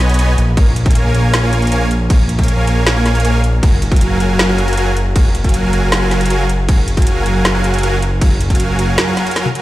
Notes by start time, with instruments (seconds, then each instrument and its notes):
Already playing: analog synth bass B1, supersaw synth B3 B4 C#5 D#5 G#5
0.09 closed hi-hat
0.14 closed hi-hat
0.19 supersaw synth B3 B4 C#5 D#5 G#5, closed hi-hat
0.38 analog synth bass A#1, closed hi-hat
0.57 supersaw synth A#3 A#4 C#5 F5 G#5, kick, closed hi-hat, crash
0.76 closed hi-hat
0.86 supersaw synth A#3 A#4 C#5 F5 G#5, kick, closed hi-hat
0.91 closed hi-hat
0.95 closed hi-hat
1.14 supersaw synth A#3 A#4 C#5 F5 G#5, closed hi-hat
1.34 snare, closed hi-hat
1.43 supersaw synth A#3 A#4 C#5 F5 G#5
1.53 closed hi-hat
1.62 closed hi-hat
1.67 closed hi-hat
1.72 supersaw synth A#3 A#4 C#5 F5 G#5, closed hi-hat
1.91 closed hi-hat
2.10 supersaw synth A#3 A#4 C#5 F5 G#5, kick, closed hi-hat, crash
2.29 closed hi-hat
2.39 supersaw synth A#3 A#4 C#5 F5 G#5, kick, closed hi-hat
2.43 closed hi-hat
2.48 closed hi-hat
2.67 supersaw synth A#3 A#4 C#5 F5 G#5, closed hi-hat
2.87 snare, closed hi-hat
2.96 supersaw synth A#3 A#4 C#5 F5 G#5
3.06 snare, closed hi-hat
3.15 closed hi-hat
3.20 closed hi-hat
3.25 supersaw synth A#3 A#4 C#5 F5 G#5, closed hi-hat
3.44 closed hi-hat
3.63 analog synth bass F#1, supersaw synth F#3 F#4 A#4 F5 G#5, kick, closed hi-hat, crash
3.82 closed hi-hat
3.92 supersaw synth F#3 F#4 A#4 F5 G#5, kick, closed hi-hat
3.96 closed hi-hat
4.01 closed hi-hat
4.20 supersaw synth F#3 F#4 A#4 F5 G#5, closed hi-hat
4.39 snare, closed hi-hat
4.49 supersaw synth F#3 F#4 A#4 F5 G#5
4.58 closed hi-hat
4.68 closed hi-hat
4.73 closed hi-hat
4.77 supersaw synth F#3 F#4 A#4 F5 G#5, closed hi-hat
4.97 closed hi-hat
5.16 supersaw synth F#3 F#4 A#4 F5 G#5, kick, closed hi-hat, crash
5.35 closed hi-hat
5.44 supersaw synth F#3 F#4 A#4 F5 G#5, kick, closed hi-hat
5.49 closed hi-hat
5.54 closed hi-hat
5.73 supersaw synth F#3 F#4 A#4 F5 G#5, closed hi-hat
5.92 snare, closed hi-hat
6.02 supersaw synth F#3 F#4 A#4 F5 G#5
6.11 snare, closed hi-hat
6.21 closed hi-hat
6.26 closed hi-hat
6.30 supersaw synth F#3 F#4 A#4 F5 G#5, closed hi-hat
6.49 closed hi-hat
6.69 supersaw synth F#3 F#4 A#4 F5 G#5, kick, closed hi-hat, crash
6.88 closed hi-hat
6.97 supersaw synth F#3 F#4 A#4 F5 G#5, kick, closed hi-hat
7.02 closed hi-hat
7.07 closed hi-hat
7.26 supersaw synth F#3 F#4 A#4 F5 G#5, closed hi-hat
7.45 snare, closed hi-hat
7.55 supersaw synth F#3 F#4 A#4 F5 G#5
7.64 closed hi-hat
7.74 closed hi-hat
7.79 closed hi-hat
7.83 supersaw synth F#3 F#4 A#4 F5 G#5, closed hi-hat
8.02 closed hi-hat
8.21 supersaw synth F#3 F#4 A#4 F5 G#5, kick, closed hi-hat, crash
8.41 closed hi-hat
8.50 supersaw synth F#3 F#4 A#4 F5 G#5, kick, closed hi-hat
8.55 closed hi-hat
8.60 closed hi-hat
8.79 supersaw synth F#3 F#4 A#4 F5 G#5, closed hi-hat
8.98 snare, closed hi-hat
9.07 supersaw synth F#3 F#4 A#4 F5 G#5
9.17 snare, closed hi-hat
9.27 supersaw synth F#3 F#4 A#4 F5 G#5, closed hi-hat
9.31 closed hi-hat
9.36 supersaw synth F#3 F#4 A#4 F5 G#5, snare, closed hi-hat
9.46 high tom
9.55 closed hi-hat